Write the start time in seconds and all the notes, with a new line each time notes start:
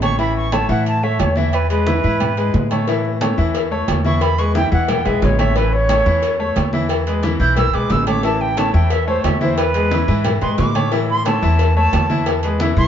Already playing: A1
0.02 A3 A4 C#5 C#6, high conga, low agogo
0.19 E3 E4 E5 B5, high conga, low agogo
0.36 C#6, high conga
0.52 A3 A4 C#5 A5, high conga, low timbale, low agogo
0.69 A2 E3 E4 E5 F#5, high conga
0.86 A5, high conga, low agogo
1.02 A3 A4 C#5 E5, high conga
1.19 E2 C#5, high conga, low timbale, low agogo
1.36 E3 E4 E5, high conga
1.53 B4, high conga, low agogo
1.70 G#3 G#4 B4, high conga, low agogo
1.86 E3 E4 E5, high conga, low timbale
2.03 G#2 E3 E4 E5, high conga
2.20 high conga, low conga, low agogo
2.37 G#3 G#4 B4, high conga, low agogo
2.54 A2, high conga, low timbale
2.71 A3 A4 C#5, high conga, low agogo
2.87 E3 E4 E5, cowbell, high conga, low agogo
3.05 high conga
3.21 A3 A4 C#5, cowbell, high conga, low timbale, low agogo
3.38 E2 E3 E4 E5, high conga
3.55 cowbell, high conga, low agogo
3.71 A3 A4 C#5, high conga
3.88 E2, cowbell, high conga, low timbale, low agogo
4.05 E3 E4 E5 C#6, high conga
4.21 B5, cowbell, high conga, low agogo
4.38 G#3 G#4 B4 C#6, high conga, low agogo
4.55 E3 E4 E5 G5, cowbell, high conga, low timbale
4.72 E2 E3 E4 E5 F#5, high conga
4.88 G5, cowbell, high conga, low conga, low agogo
5.05 B1 G#3 G#4 B4 E5, high conga, low conga, low agogo
5.22 A1 C#5, cowbell, high conga, low timbale
5.39 A3 A4 C#5 E5, high conga, low agogo
5.56 E3 E4 B4 E5, cowbell, high conga, low agogo
5.73 C#5, high conga
5.89 A3 A4 C#5, cowbell, high conga, low timbale, low agogo
6.06 E2 E3 E4 E5, high conga
6.23 cowbell, high conga, low agogo
6.40 A3 A4 C#5, high conga
6.56 E2, cowbell, high conga, low timbale, low agogo
6.73 E3 E4 E5, high conga
6.89 cowbell, low agogo
7.07 G#3 G#4 B4, high conga, low agogo
7.23 E3 E4 E5, cowbell, high conga, low timbale
7.40 B1 E3 E4 E5 G6, high conga
7.56 E6, cowbell, high conga, low conga, low agogo
7.73 B1 G#3 G#4 B4 D6, high conga, low agogo
7.90 A1 E6, cowbell, high conga, low timbale
8.07 A3 A4 C#5 D6, high conga, low agogo
8.23 E3 E4 E5 A5, cowbell, high conga, low agogo
8.41 G5, high conga
8.57 A3 A4 C#5 A5, cowbell, high conga, low timbale, low agogo
8.74 E2 E3 E4 E5 G5
8.90 E5, cowbell, high conga, low agogo
9.07 A3 A4 C5 C#5, high conga
9.24 E2 E5, cowbell, high conga, low timbale, low agogo
9.41 E3 E4 C5 E5, high conga
9.58 B4, cowbell, high conga, low agogo
9.74 G#3 G#4 B4, high conga, low agogo
9.91 E3 E4 E5, cowbell, high conga, low timbale
10.08 G#2 E3 E4 E5, high conga
10.24 cowbell, high conga, low conga, low agogo
10.41 G#2 G#3 G#4 B4 C6, high conga, low conga, low agogo
10.58 A2 D6, cowbell, high conga, low timbale
10.75 A3 A4 C#5, high conga, low agogo
10.92 E3 E4 E5, cowbell, high conga, low agogo
11.10 C6, high conga
11.25 A3 A4 C#5 A5, cowbell, high conga, low timbale, low agogo
11.42 E2 E3 E4 E5, high conga
11.59 cowbell, high conga, low agogo
11.77 A3 A4 C#5 A5, high conga
11.93 E2, cowbell, high conga, low timbale, low agogo
12.10 E3 E4 E5, high conga
12.26 cowbell, high conga, low agogo
12.43 G#3 G#4 B4, high conga, low agogo
12.60 E3 E4 E5, cowbell, high conga, low timbale
12.77 B1 E3 E4 E5 C#6, high conga